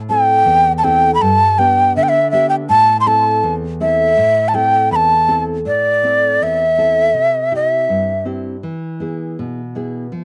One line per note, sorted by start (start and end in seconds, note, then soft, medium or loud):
0.00 0.44 A2 medium
0.09 0.68 C4 soft
0.09 0.69 E4 soft
0.09 0.69 A4 medium
0.09 0.72 G5 medium
0.45 1.18 E2 medium
0.78 0.85 A5 medium
0.83 1.13 C4 medium
0.83 1.13 E4 soft
0.83 1.13 A4 medium
0.83 1.14 G5 medium
1.15 1.23 B5 medium
1.21 1.93 G2 medium
1.21 1.60 A5 medium
1.58 2.17 B3 soft
1.58 2.18 D4 soft
1.58 2.18 G4 soft
1.58 1.95 G5 medium
1.96 2.67 D3 medium
1.96 2.05 E5 medium
2.03 2.10 G5 medium
2.09 2.30 E5 medium
2.31 2.62 B3 soft
2.31 2.62 D4 soft
2.31 2.62 G4 medium
2.31 2.48 E5 medium
2.49 2.55 G5 medium
2.69 3.41 A2 medium
2.69 2.97 A5 loud
3.00 3.09 C6 medium
3.06 3.65 C4 soft
3.06 3.65 E4 soft
3.06 3.66 A4 medium
3.06 3.54 A5 medium
3.43 4.15 E2 medium
3.80 4.10 C4 soft
3.80 4.10 E4 soft
3.80 4.10 A4 medium
3.80 4.50 E5 medium
4.17 4.89 A2 medium
4.48 4.56 A5 medium
4.54 5.13 C4 soft
4.54 5.14 E4 soft
4.54 5.14 A4 medium
4.54 4.92 G5 medium
4.91 5.63 E2 medium
4.91 4.97 B5 medium
4.96 5.44 A5 medium
5.28 5.58 C4 soft
5.28 5.58 E4 soft
5.28 5.58 A4 soft
5.65 6.38 A2 medium
5.65 6.44 D5 medium
6.03 6.63 C4 soft
6.03 6.63 E4 soft
6.03 6.64 A4 soft
6.42 7.13 E2 medium
6.42 7.53 E5 medium
6.78 7.08 C4 soft
6.78 7.08 E4 soft
6.78 7.08 A4 soft
7.14 7.87 C3 medium
7.51 8.11 C4 soft
7.51 8.11 E4 soft
7.51 8.12 G4 soft
7.55 7.68 D#5 medium
7.68 8.24 E5 medium
7.89 8.62 G2 medium
8.25 8.56 C4 soft
8.25 8.56 E4 soft
8.25 8.56 G4 soft
8.63 9.36 E3 medium
9.00 9.60 B3 soft
9.00 9.60 E4 soft
9.00 9.61 G#4 soft
9.39 10.11 B2 medium
9.75 10.05 B3 soft
9.75 10.06 E4 soft
9.75 10.06 G#4 soft
10.12 10.24 F3 medium